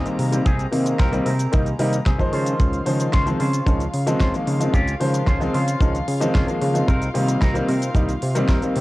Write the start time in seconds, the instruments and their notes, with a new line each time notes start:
Already playing: string section G#3 A#5
0.05 grand piano D#3 G3 A#3 C4, closed hi-hat, cabasa
0.18 analog synth bass C3, muted clean electric guitar stroke, open hi-hat
0.31 grand piano D#3 G3 A#3 C4, closed hi-hat, cabasa
0.45 analog synth bass C2, clean electric guitar C4 G4 G#4, kick, closed hi-hat, cabasa
0.59 closed hi-hat, cabasa
0.71 analog synth bass C3, grand piano D#3 A#3 C4, open hi-hat
0.85 muted clean electric guitar stroke, closed hi-hat, cabasa
0.98 analog synth bass C2, clean electric guitar C4 G4 A#4, kick, snare, closed hi-hat, cabasa
1.12 grand piano D#3 G3 A#3 C4, closed hi-hat, cabasa
1.25 analog synth bass C3, clean electric guitar C4 G4 A#4, open hi-hat
1.39 closed hi-hat, cabasa
1.52 analog synth bass C2, grand piano D#3 G3 A#3 D#4, kick, closed hi-hat, cabasa
1.66 closed hi-hat, cabasa
1.79 analog synth bass C3, grand piano D#3 G3 A#3 D#4, open hi-hat
1.93 closed hi-hat, cabasa
2.06 analog synth bass C2, clean electric guitar C4 G4 G#4, kick, snare, closed hi-hat, cabasa
2.18 grand piano D#3 F3 G#3 C5, kick, closed hi-hat, cabasa
2.32 analog synth bass C#3, clean electric guitar C#4 F4 C5, open hi-hat
2.46 closed hi-hat, cabasa
2.59 analog synth bass C#2, string section F4 F5, kick, closed hi-hat, cabasa
2.73 closed hi-hat, cabasa
2.86 analog synth bass C#3, grand piano D#3 F3 G#3 C5, open hi-hat
2.99 muted clean electric guitar stroke, closed hi-hat, cabasa
3.13 analog synth bass C#2, clean electric guitar C#4 F4 C5, kick, snare, closed hi-hat, cabasa
3.26 grand piano D#3 F3 G#3 C4, closed hi-hat, cabasa
3.40 analog synth bass C#3, clean electric guitar C#4 F4 C5, open hi-hat
3.53 closed hi-hat, cabasa
3.66 analog synth bass C#2, grand piano D#3 F3 G#3 C#4, kick, closed hi-hat, cabasa
3.80 closed hi-hat, cabasa
3.94 analog synth bass C#3, open hi-hat
4.06 grand piano D#3 F3 G#3 C4, closed hi-hat, cabasa
4.20 analog synth bass C#2, clean electric guitar C#4 F4 C5, kick, snare, closed hi-hat, cabasa
4.33 grand piano D#3 F3 G#3 A#3, closed hi-hat, cabasa
4.46 analog synth bass C#3, muted clean electric guitar stroke, open hi-hat
4.60 grand piano D#3 F3 G#3 C4, closed hi-hat, cabasa
4.73 analog synth bass C#2, clean electric guitar C#4 F4 G4, kick, closed hi-hat, cabasa
4.88 closed hi-hat, cabasa
5.00 analog synth bass C#3, grand piano D#3 F3 G#3 C5, open hi-hat
5.13 muted clean electric guitar stroke, closed hi-hat, cabasa
5.27 analog synth bass C#2, clean electric guitar C#4 F4 C5, kick, snare, closed hi-hat, cabasa
5.40 grand piano D#3 F3 G#3 C4, closed hi-hat, cabasa
5.54 analog synth bass C#3, clean electric guitar C#4 F4 C5, open hi-hat
5.68 closed hi-hat, cabasa
5.81 analog synth bass C#2, grand piano D#3 F3 G#3 C#4, kick, closed hi-hat, cabasa
5.95 closed hi-hat, cabasa
6.08 analog synth bass C#3, open hi-hat
6.20 grand piano D#3 F3 G#3 C4, closed hi-hat, cabasa
6.34 analog synth bass C#2, clean electric guitar C#4 F4 C5, kick, snare, closed hi-hat, cabasa
6.47 grand piano D#3 F3 G#3 A#3, closed hi-hat, cabasa
6.61 analog synth bass C#3, muted clean electric guitar stroke, open hi-hat
6.74 grand piano D#3 F3 G#3 C4, closed hi-hat, cabasa
6.87 analog synth bass C2, clean electric guitar C4 D#4 A#4, kick, closed hi-hat, cabasa
7.02 closed hi-hat, cabasa
7.14 analog synth bass C3, grand piano D#3 G3 A#3 C4, open hi-hat
7.28 muted clean electric guitar stroke, closed hi-hat, cabasa
7.41 analog synth bass C2, clean electric guitar C4 D#4 A#4, kick, snare, closed hi-hat, cabasa
7.54 grand piano D#3 G3 A#3 C4, closed hi-hat, cabasa
7.67 analog synth bass C3, clean electric guitar C4 D#4 A#4, open hi-hat
7.82 closed hi-hat, cabasa
7.95 analog synth bass C2, grand piano D#3 G3 A#3 D#4, kick, closed hi-hat, cabasa
8.09 closed hi-hat, cabasa
8.22 analog synth bass C3, open hi-hat
8.35 grand piano D#3 G3 A#3 C4, closed hi-hat, cabasa
8.48 analog synth bass C2, clean electric guitar C4 D#4 A#4, kick, snare, closed hi-hat, cabasa
8.62 grand piano D#3 G3 A#3 C4, closed hi-hat, cabasa
8.75 analog synth bass C3, muted clean electric guitar stroke, open hi-hat